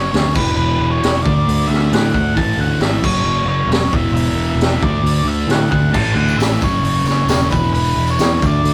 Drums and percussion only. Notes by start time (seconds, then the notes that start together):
0.14 snare, open hi-hat
0.35 kick, crash
1.03 snare, open hi-hat
1.26 kick
1.49 open hi-hat
1.73 snare
1.93 snare, open hi-hat
2.14 kick
2.37 kick, open hi-hat
2.80 snare, open hi-hat
3.04 kick, crash
3.71 snare, open hi-hat
3.93 kick
4.16 open hi-hat
4.61 snare, open hi-hat
4.83 kick
5.06 open hi-hat
5.49 snare, open hi-hat
5.72 kick
5.94 kick, crash, tambourine
6.07 tambourine
6.18 tambourine
6.28 tambourine
6.40 snare, open hi-hat, tambourine
6.61 kick, tambourine
6.72 tambourine
6.83 open hi-hat, tambourine
7.05 snare, tambourine
7.17 tambourine
7.28 snare, open hi-hat, tambourine
7.51 kick, tambourine
7.63 tambourine
7.74 open hi-hat, tambourine
7.84 tambourine
7.96 tambourine
8.07 tambourine
8.19 snare, open hi-hat, tambourine
8.42 kick, tambourine
8.54 tambourine
8.65 open hi-hat, tambourine